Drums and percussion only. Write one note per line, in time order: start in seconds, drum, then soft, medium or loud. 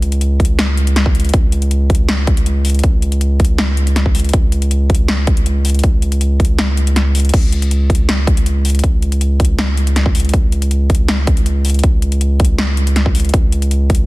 0.02 closed hi-hat medium
0.12 closed hi-hat medium
0.21 closed hi-hat medium
0.40 kick medium
0.40 closed hi-hat soft
0.45 closed hi-hat medium
0.59 snare loud
0.59 closed hi-hat medium
0.77 closed hi-hat medium
0.87 closed hi-hat medium
0.96 snare medium
0.96 closed hi-hat medium
1.06 kick medium
1.15 closed hi-hat medium
1.20 closed hi-hat medium
1.25 closed hi-hat soft
1.29 closed hi-hat medium
1.33 kick loud
1.33 closed hi-hat medium
1.52 closed hi-hat medium
1.62 closed hi-hat medium
1.71 closed hi-hat medium
1.90 kick medium
1.90 closed hi-hat soft
1.95 closed hi-hat medium
2.09 snare loud
2.09 closed hi-hat medium
2.27 kick loud
2.27 closed hi-hat medium
2.37 closed hi-hat medium
2.46 closed hi-hat medium
2.65 open hi-hat medium
2.70 closed hi-hat medium
2.75 closed hi-hat soft
2.79 closed hi-hat medium
2.83 kick loud
2.83 closed hi-hat medium
3.02 closed hi-hat medium
3.12 closed hi-hat medium
3.21 closed hi-hat medium
3.40 kick medium
3.40 closed hi-hat soft
3.45 closed hi-hat medium
3.58 snare loud
3.58 closed hi-hat medium
3.77 closed hi-hat medium
3.87 closed hi-hat medium
3.96 snare medium
3.96 closed hi-hat medium
4.06 kick medium
4.15 open hi-hat loud
4.20 closed hi-hat medium
4.24 closed hi-hat soft
4.29 closed hi-hat medium
4.33 kick loud
4.33 closed hi-hat medium
4.52 closed hi-hat medium
4.62 closed hi-hat medium
4.71 closed hi-hat medium
4.90 kick medium
4.90 closed hi-hat soft
4.95 closed hi-hat medium
5.08 snare loud
5.08 closed hi-hat medium
5.27 kick loud
5.27 closed hi-hat medium
5.37 closed hi-hat medium
5.46 closed hi-hat medium
5.65 open hi-hat loud
5.70 closed hi-hat medium
5.75 closed hi-hat soft
5.79 closed hi-hat medium
5.83 kick loud
5.83 closed hi-hat medium
6.02 closed hi-hat medium
6.12 closed hi-hat medium
6.21 closed hi-hat medium
6.40 kick medium
6.40 closed hi-hat medium
6.45 closed hi-hat medium
6.59 snare loud
6.59 closed hi-hat medium
6.77 closed hi-hat medium
6.87 closed hi-hat medium
6.96 snare medium
6.96 closed hi-hat medium
7.15 open hi-hat loud
7.20 closed hi-hat medium
7.25 closed hi-hat soft
7.29 closed hi-hat medium
7.34 kick loud
7.34 closed hi-hat medium
7.34 crash medium
7.52 closed hi-hat medium
7.62 closed hi-hat medium
7.71 closed hi-hat medium
7.90 kick medium
7.90 closed hi-hat medium
7.95 closed hi-hat medium
8.09 snare loud
8.09 closed hi-hat medium
8.27 kick loud
8.27 closed hi-hat medium
8.37 closed hi-hat medium
8.46 closed hi-hat medium
8.65 open hi-hat loud
8.70 closed hi-hat medium
8.75 closed hi-hat medium
8.79 closed hi-hat medium
8.84 kick loud
8.84 closed hi-hat medium
9.02 closed hi-hat medium
9.12 closed hi-hat medium
9.21 closed hi-hat medium
9.40 kick medium
9.40 closed hi-hat medium
9.45 closed hi-hat medium
9.59 snare loud
9.59 closed hi-hat medium
9.77 closed hi-hat medium
9.87 closed hi-hat medium
9.96 snare medium
9.96 closed hi-hat medium
10.06 kick medium
10.15 open hi-hat loud
10.20 closed hi-hat medium
10.25 closed hi-hat soft
10.29 closed hi-hat medium
10.34 kick loud
10.34 closed hi-hat medium
10.52 closed hi-hat medium
10.62 closed hi-hat medium
10.71 closed hi-hat medium
10.90 kick medium
10.90 closed hi-hat medium
10.95 closed hi-hat medium
11.08 snare loud
11.08 closed hi-hat medium
11.27 kick loud
11.27 closed hi-hat medium
11.37 closed hi-hat medium
11.46 closed hi-hat medium
11.65 open hi-hat medium
11.70 closed hi-hat medium
11.74 closed hi-hat soft
11.79 closed hi-hat medium
11.83 kick loud
11.83 closed hi-hat medium
12.02 closed hi-hat medium
12.12 closed hi-hat medium
12.21 closed hi-hat medium
12.40 kick medium
12.40 closed hi-hat medium
12.45 closed hi-hat medium
12.58 snare loud
12.58 closed hi-hat medium
12.77 closed hi-hat medium
12.87 closed hi-hat medium
12.96 snare medium
12.96 closed hi-hat medium
13.06 kick medium
13.15 open hi-hat medium
13.20 closed hi-hat medium
13.25 closed hi-hat soft
13.29 closed hi-hat medium
13.34 kick loud
13.34 closed hi-hat medium
13.52 closed hi-hat medium
13.62 closed hi-hat medium
13.71 closed hi-hat medium
13.90 kick medium
13.90 closed hi-hat medium
13.95 closed hi-hat medium